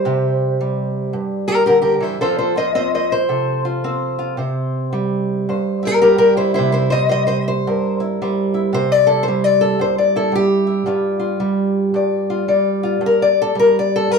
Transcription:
Already playing: G3 C5
0.05 C3 G4
0.61 G3
1.13 G2
1.48 G4 A#4
1.66 D3 G4 A#4
1.82 G4 A#4
2.00 E3 E4 C5
2.21 F3 C4 F4 A4 C5
2.38 A4 C5
2.56 F4 C5 D#5
2.75 C4 C5 D#5
2.95 C5 D#5
3.12 C5
3.29 C3 A4
3.65 F4
3.84 C4 C5
4.19 F4
4.37 C3 C5
4.93 G3
5.49 G2 C5
5.83 E4 G4
5.87 A#4
6.02 G3 G4 A#4
6.18 G4 A#4
6.37 E4 C5
6.54 E4 C5
6.58 C3
6.72 E4 C5
6.90 G3 C5 D#5
7.09 G3 C5 D#5
7.27 C5 D#5
7.48 C5
7.67 G2 A#4
8.00 E4
8.22 G3 C5
8.54 E4
8.73 C3 C5
8.92 D5
9.07 E4 A4
9.23 C5
9.28 G3
9.44 D5
9.61 A4
9.79 G2 C5
9.98 D5
10.16 E4 A4
10.32 G3 G4
10.67 E4
10.86 G2 G3 F4
11.19 F4
11.40 G3
11.94 G2 D5
12.30 F4
12.48 G3 D5
12.83 F4
13.01 G2
13.06 A#4
13.22 D5
13.42 A4
13.55 G3
13.59 A#4
13.79 D5
13.96 A4
14.10 G2 A#4

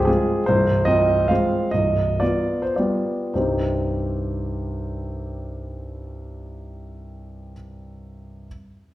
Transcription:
Already playing: C1 C2 C5
0.05 G#3 C4 F4 G#4
0.46 C1 C2 C5
0.85 C4 F4 D#5
1.28 G#3 C4 F4 F5
1.71 C1 C2 D#5
2.20 B3 F4 D5
2.62 C5
2.76 G3 B3 F4 D5
3.34 C2 G2 G3 C4 D#4 G4 C5

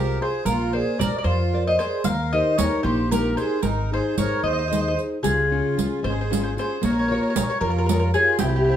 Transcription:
Already playing: C2 C3 F4 G4 G#4 A#4 C5
0.20 F4 G#4 C5
0.45 A#1 A#3 F4 A#4, riq
0.73 G#4 A#4 C5 D5
0.99 A#1 A#4 C5 D5, riq
1.18 A#4 D5
1.24 F2 F3 F4 C5
1.54 A#4 C5 D5
1.67 C5 D#5
1.79 G#4 A#4 C5 D5, riq
2.04 D#2 D#3 A#4 F5, riq
2.33 D#4 G4 A#4 C5 D#5
2.57 D#2 D#4 G4 A#4 C#5, riq
2.83 A#1 A#3 G4 C5
3.11 D#4 G4 A#4, riq
3.37 D#4 G4 G#4 A#4 C5, riq
3.62 G#1 G#3 D#4 A#4, riq
3.92 D#4 G#4 C5
4.18 G#1 D#4 G#4 A#4 C5 C#5, riq
4.43 D#2 D#3 C5 D#5
4.53 D#5
4.59 D#5
4.68 D#4 G#4 C5 D#5
4.73 D#5, riq
4.81 D#5
4.88 D#5
4.97 D#4 G#4 C5, riq
5.23 C#2 C#3 F4 G#4, riq
5.52 C#4 F4 G#4
5.77 C#2 C#4 F4 G#4, riq
6.03 G#1 G#3 G#4 C5
6.12 C5
6.21 C5
6.31 C#4 F4 G#4 C5, riq
6.37 C5
6.43 C5
6.57 C#4 F4 G#4 C5, riq
6.82 A#1 A#3 A#4 C#5, riq
6.92 C#5
6.99 C#5
7.08 F4 A#4 C#5
7.15 C#5
7.23 C#5
7.30 C#5
7.35 A#1 F4 A#4 C#5, riq
7.43 C#5
7.50 C#5
7.61 F2 F3 F4 A#4
7.70 A#4
7.78 A#4
7.86 A#4, riq
7.90 F4 A#4 C#5
8.00 A#4
8.14 F4 G#4 A#4 C#5, riq
8.39 C2 C4 E4 G4, riq
8.48 G4
8.56 G4
8.64 G4
8.68 G4 C5 E5

